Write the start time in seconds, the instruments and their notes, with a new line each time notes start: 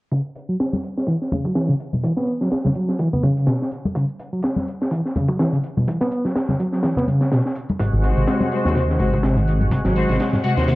0.11 reed electric piano C#3, kick, closed hi-hat
0.25 closed hi-hat
0.35 closed hi-hat
0.49 reed electric piano F#3, closed hi-hat
0.60 snare, closed hi-hat
0.73 snare, high conga
0.84 closed hi-hat
0.97 snare, closed hi-hat
1.07 reed electric piano E3, kick, closed hi-hat
1.22 snare
1.31 reed electric piano C#3, closed hi-hat, high conga, low conga
1.45 reed electric piano F#3, kick, closed hi-hat
1.55 reed electric piano E3, snare, closed hi-hat
1.69 reed electric piano C#3, closed hi-hat
1.80 closed hi-hat
1.93 reed electric piano B2, closed hi-hat, high conga
2.04 reed electric piano E3, kick, closed hi-hat
2.16 reed electric piano B3, snare, closed hi-hat
2.27 closed hi-hat
2.41 reed electric piano F#3, snare, closed hi-hat
2.51 snare, closed hi-hat
2.64 reed electric piano C#3, snare, high conga
2.75 reed electric piano F#3, closed hi-hat
2.89 snare, closed hi-hat
2.99 reed electric piano E3, kick, closed hi-hat
3.13 reed electric piano B3, low conga
3.23 reed electric piano C#3, kick, closed hi-hat, high conga
3.37 closed hi-hat
3.47 reed electric piano B2, snare, closed hi-hat
3.62 snare
3.71 closed hi-hat
3.85 closed hi-hat, high conga
3.95 reed electric piano C#3, kick, closed hi-hat
4.09 closed hi-hat
4.19 closed hi-hat
4.33 reed electric piano F#3, closed hi-hat
4.42 snare, closed hi-hat
4.56 snare, high conga
4.68 closed hi-hat
4.81 snare, closed hi-hat
4.91 reed electric piano E3, kick, closed hi-hat
5.05 snare
5.16 reed electric piano C#3, closed hi-hat, high conga, low conga
5.28 reed electric piano F#3, kick, closed hi-hat
5.39 reed electric piano E3, snare, closed hi-hat
5.53 reed electric piano C#3, closed hi-hat
5.63 closed hi-hat
5.77 reed electric piano B2, closed hi-hat, high conga
5.88 reed electric piano E3, kick, closed hi-hat
6.01 reed electric piano B3, snare, closed hi-hat
6.11 closed hi-hat
6.25 reed electric piano F#3, snare, closed hi-hat
6.36 snare, closed hi-hat
6.49 reed electric piano C#3, snare, high conga
6.60 reed electric piano F#3, closed hi-hat
6.72 snare, closed hi-hat
6.83 reed electric piano E3, snare, closed hi-hat
6.97 reed electric piano B3, snare, low conga
7.08 reed electric piano C#3, closed hi-hat, high conga
7.21 snare, closed hi-hat
7.32 reed electric piano B2, snare, closed hi-hat
7.45 snare
7.55 closed hi-hat
7.69 closed hi-hat, high conga
7.79 detuned saw bass G#1, reed electric piano G#2, tonewheel organ C3 G#3 F#4, kick, closed hi-hat
7.93 detuned saw bass G#1, closed hi-hat
8.04 string section G#3 F#4 C5, closed hi-hat
8.17 detuned saw bass G#1, reed electric piano C3, closed hi-hat
8.27 snare, closed hi-hat
8.40 snare, high conga
8.52 string section G#3 F#4 C5, closed hi-hat
8.65 detuned saw bass D#2, string section G#3 F#4 C5, snare, closed hi-hat
8.75 reed electric piano C3, kick, closed hi-hat
8.90 snare
8.99 detuned saw bass G#1, reed electric piano G#2, string section G#3 F#4 C5, closed hi-hat, high conga, low conga
9.13 reed electric piano C3, kick, closed hi-hat
9.23 reed electric piano C3, snare, closed hi-hat
9.37 reed electric piano G#2, closed hi-hat
9.48 closed hi-hat
9.61 reed electric piano F#2, closed hi-hat, high conga
9.71 detuned saw bass G#1, reed electric piano C3, kick, closed hi-hat
9.85 detuned saw bass G#1, reed electric piano F#3, snare, closed hi-hat
9.96 string section G#3 F#4 C5, closed hi-hat
10.09 detuned saw bass G#1, reed electric piano C3, snare, closed hi-hat
10.20 snare, closed hi-hat
10.33 reed electric piano G#2, snare, high conga
10.44 reed electric piano C3, string section G#3 F#4 F#5, closed hi-hat
10.57 detuned saw bass D#2, string section G#3 F#4 C5, snare, closed hi-hat
10.68 reed electric piano C3, kick, closed hi-hat